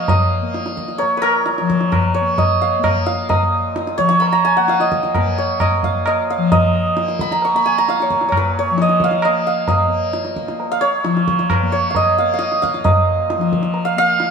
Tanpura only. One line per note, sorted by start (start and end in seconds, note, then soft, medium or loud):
0.00 1.02 A#2 medium
0.00 1.60 F3 medium
0.00 0.42 A#3 medium
0.42 2.21 A#3 medium
1.02 3.40 A#2 medium
1.61 3.98 F3 medium
2.21 2.79 A#3 medium
2.79 4.58 A#3 medium
3.41 5.75 A#2 medium
3.99 6.37 F3 medium
4.58 5.17 A#3 medium
5.17 6.96 A#3 medium
5.76 8.12 A#2 medium
6.37 8.70 F3 medium
6.96 7.54 A#3 medium
7.54 9.27 A#3 medium
8.12 10.45 A#2 medium
8.70 11.03 F3 medium
9.27 9.87 A#3 medium
9.87 11.63 A#3 medium
10.46 12.79 A#2 medium
11.04 13.37 F3 soft
11.63 12.21 A#3 medium
12.21 13.96 A#3 medium
12.80 14.31 A#2 medium
13.37 14.31 F3 medium
13.96 14.31 A#3 medium